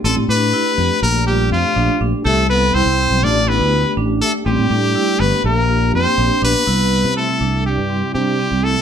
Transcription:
X:1
M:9/8
L:1/16
Q:3/8=81
K:C
V:1 name="Trumpet"
A2 B6 _B2 G2 F4 z2 | A2 B2 c4 d2 B4 z2 A2 | G6 B2 _B4 c4 =B2- | B4 A4 G4 G4 A2 |]
V:2 name="Tonewheel organ"
[A,DG]8 [A,DG]8- [A,DG]2 | [G,CE]8 [A,DG]8- [A,DG]2 | [A,DG]8 [_B,DG]8- [B,DG]2 | [C,G,E]16- [C,G,E]2 |]
V:3 name="Vibraphone"
C2 D2 E2 G4 F4 D2 D2 | G2 A2 E4 F2 E4 D4 | C2 D2 E2 G4 F4 D2 D2 | E4 C2 D4 C2 D2 C4 |]
V:4 name="Trombone"
z8 z2 G,2 F,4 z2 | A,2 B,2 C4 D2 B,4 z2 A,2 | G,6 B,2 _B,4 C4 =B,2- | B,4 A,4 G,4 G,4 A,2 |]
V:5 name="Fingered electric bass" clef=bass
A,,, A,, A,,2 z2 F,, z _B,,,4 F,, z B,,, z B,,, z | C,,4 C,, C,,2 B,,, A,,,3 D,,2 z A,,,2 z2 | A,,, A,, A,,2 z2 G,,, z _B,,,4 F,, z B,,, z B,,, z | C,,3 C,2 z C,,3 G,,2 z C,2 z C,,2 z |]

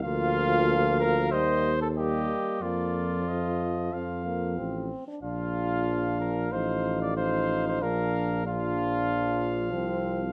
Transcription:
X:1
M:4/4
L:1/16
Q:1/4=93
K:Bb
V:1 name="Trumpet"
f8 e2 z2 e4 | d4 e4 f6 z2 | f8 f4 f4 | f4 f12 |]
V:2 name="Flugelhorn"
F6 B2 c3 A G4 | F12 z4 | F6 B2 c3 d c3 c | B4 F8- F2 z2 |]
V:3 name="French horn"
B,8 B,2 z2 B,4 | B,4 F,6 B,2 C3 D | D8 E4 E4 | D4 D8 C4 |]
V:4 name="Trombone" clef=bass
F,8 G,2 z2 G,4 | F,8 F,6 z2 | F,8 F,4 F,4 | F,4 F,12 |]
V:5 name="Bass trombone" clef=bass
D,,8 E,,6 z2 | F,,8 F,,4 A,,,2 z2 | B,,,8 A,,,8 | B,,,12 C,,4 |]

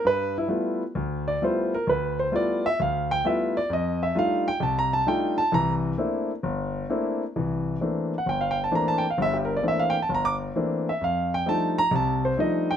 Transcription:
X:1
M:4/4
L:1/16
Q:"Swing" 1/4=131
K:Cmix
V:1 name="Grand piano"
=B2 E2 z6 d2 c2 _B2 | =B2 c2 d2 e2 f2 g2 e2 d2 | _e2 =e2 f2 g2 (3a2 b2 a2 g2 a2 | b2 z12 z2 |
z6 z ^f g =f g a b a g f | e G B d e f g a b d' z4 e2 | f2 g2 a2 b2 a2 c2 _e2 g2 |]
V:2 name="Grand piano"
G,,4 [G,A,=B,EF]2 z2 D,,4 [G,A,B,EF]2 z2 | D,,4 [G,A,=B,EF]2 z2 D,,4 [G,A,B,EF]2 z2 | F,,4 [G,A,D_EF]2 z2 C,,4 [G,A,DEF]2 z2 | [C,,E,]4 [A,B,CDE]2 z2 G,,,4 [A,B,CDE]2 z2 |
[C,,E,]4 [E,A,B,CD]2 z2 G,,,4 [E,A,B,CD]2 z2 | [G,,,G,,]4 [E,A,B,CD]2 z2 G,,,4 [E,A,B,CD]2 z2 | F,,4 [F,G,A,D_E]2 z2 [C,,C,]4 [F,G,A,DE]2 z2 |]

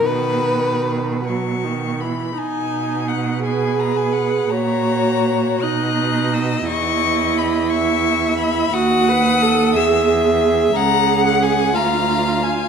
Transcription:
X:1
M:6/8
L:1/16
Q:3/8=57
K:B
V:1 name="Violin"
F6 c'4 b2 | g4 f2 g2 a g f2 | a6 f'4 e'2 | c'4 b2 c'4 b2 |
d'6 e'2 z4 | [K:F#mix] a3 f g2 a4 g2 |]
V:2 name="Violin"
B6 z6 | z6 B6 | c6 d6- | d6 e6 |
f6 e6 | [K:F#mix] f6 ^e6 |]
V:3 name="Viola"
D,6 F,2 D,2 E,2 | D6 G6 | F6 D6 | E12 |
F2 B2 =A2 G6 | [K:F#mix] G6 ^E6 |]
V:4 name="Cello" clef=bass
B,,8- B,,3 z | B,,12 | A,,6 B,,6 | E,,12 |
D,,6 E,,6 | [K:F#mix] C,,6 =D,,6 |]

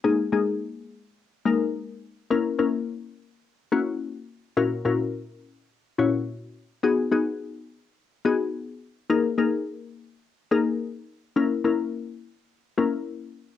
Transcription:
X:1
M:4/4
L:1/8
Q:1/4=106
K:D#phr
V:1 name="Synth pluck"
[G,A,DG] [G,A,DG]2 z2 [G,A,DA]2 z | [A,CEA] [A,CEA]2 z2 [A,CEF]2 z | [A,,CEFA] [A,,CEFA]2 z2 [A,,CEFc]2 z | [B,DFG] [B,DFG]2 z2 [B,DFG]2 z |
[A,DGA] [A,DGA]2 z2 [A,DGA]2 z | [A,CEA] [A,CEA]2 z2 [A,CEA]2 z |]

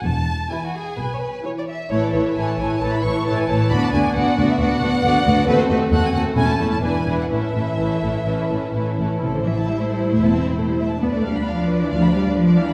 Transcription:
X:1
M:4/4
L:1/16
Q:1/4=132
K:A
V:1 name="Violin section"
a4 g8 z4 | c d e2 g a g2 a b c'2 a g a2 | b a g2 f3 e f8 | B ^B ^d2 f g f2 g a2 a g3 f |
e12- e2 z2 | [K:Am] c16 | d16 |]
V:2 name="Violin section"
z4 E F G2 B c B2 c d e2 | [Ac]2 [Ac]2 [Ac]2 [Ac]2 [Ac]2 [Ac]2 [Ac]2 [Ac]2 | [Fd]2 [Fd]2 [Fd]2 [Fd]2 [Fd]2 [Fd]2 [Fd]2 [Fd]2 | [FA]2 [FA]2 [FA]2 [FA]2 [EA]2 [EA]2 [EB]2 [EB]2 |
[EA]2 [EA]2 [EA]2 [EA]2 [EA]2 [EA]2 [EA]2 [EA]2 | [K:Am] A c e a e c A c e a e c A c e a | B d f b f d B d f b f d B d f b |]
V:3 name="Viola section"
z4 [E,E]4 z4 [E,E]4 | [E,E]2 [E,E]2 [E,E]2 [E,E]2 [E,E]2 [E,E]2 [E,E]2 [E,E]2 | [B,D]2 [B,D]2 [B,D]2 [B,D]2 [B,D]2 [B,D]2 [B,D]2 [B,D]2 | [A,^B,]2 [A,B,]2 [A,B,]2 [A,B,]2 [A,C]2 [A,C]2 [E,D]2 [E,D]2 |
[E,C]2 [E,C]2 [E,C]2 [E,C]2 [E,C]2 [E,C]2 [E,C]2 [E,C]2 | [K:Am] E16 | D16 |]
V:4 name="Cello section" clef=bass
E,,4 z4 B,,4 z4 | A,,2 A,,2 A,,2 A,,2 A,,2 A,,2 A,,2 A,,2 | D,,2 D,,2 D,,2 D,,2 D,,2 D,,2 D,,2 D,,2 | ^D,,2 D,,2 D,,2 D,,2 E,,2 E,,2 E,,2 E,,2 |
A,,2 A,,2 A,,2 A,,2 A,,2 A,,2 A,,2 A,,2 | [K:Am] C, D, E,2 G, A, G,2 A, B, C2 A, G, A,2 | B, A, G,2 F,3 E, F,2 G,2 F,2 E,2 |]
V:5 name="Double bass section" clef=bass
E,,,4 z4 B,,,4 z4 | A,,,2 A,,,2 A,,,2 A,,,2 A,,,2 A,,,2 A,,,2 A,,,2 | D,,2 D,,2 D,,2 D,,2 D,,2 D,,2 D,,2 D,,2 | ^D,,2 D,,2 D,,2 D,,2 E,,,2 E,,,2 E,,,2 E,,,2 |
A,,,2 A,,,2 A,,,2 A,,,2 A,,,2 A,,,2 A,,,2 A,,,2 | [K:Am] A,,,4 z4 E,,,4 z4 | D,,4 z4 D,,4 z4 |]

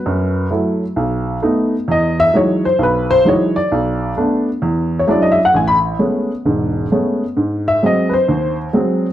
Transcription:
X:1
M:4/4
L:1/16
Q:"Swing" 1/4=131
K:E
V:1 name="Upright piano"
B4 z12 | d2 e2 c2 =c2 B2 c2 ^c2 =d2- | =d4 z6 z c d ^d e f | g b z12 z2 |
z2 e2 d2 [B^B]4 z6 |]
V:2 name="Upright piano" clef=bass
F,,4 [F,A,E]2 z2 B,,,4 [A,B,D]2 z2 | E,,4 [E,F,G,D]2 z2 B,,,4 [E,F,G,D]2 z2 | B,,,4 [A,B,=D]2 z2 E,,4 [F,G,CDE]2 z2 | A,,,4 [G,A,B,C]2 z2 [E,,,G,,]4 [G,A,B,C]2 z2 |
G,,4 [F,G,^B,]2 z2 D,,4 [F,G,B,]2 z2 |]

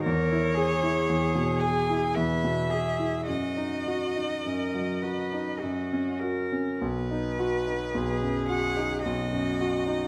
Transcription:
X:1
M:3/4
L:1/16
Q:1/4=54
K:B
V:1 name="Violin"
c6 g2 e4 | d8- d2 z2 | B6 f2 d4 |]
V:2 name="Cello"
A2 G6 B2 G2 | F4 A2 B2 F2 A2 | z4 G4 F4 |]
V:3 name="Grand piano"
E,, E G E E,, B,, G E E,, B,, G E | F,, D F D F,, F, F D F,, C F C | B,,, D F D B,,, F,, F D B,,, F,, F D |]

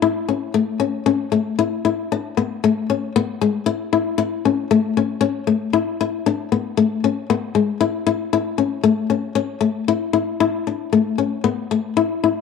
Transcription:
X:1
M:4/4
L:1/8
Q:"Swing 16ths" 1/4=116
K:A
V:1 name="Nylon-string guitar"
E C A, C C A, E E | D B, A, C B, G, E E | E C A, C C A, E E | D B, A, C B, G, E E |
E C A, C C A, E E | E D A, C B, A, E E |]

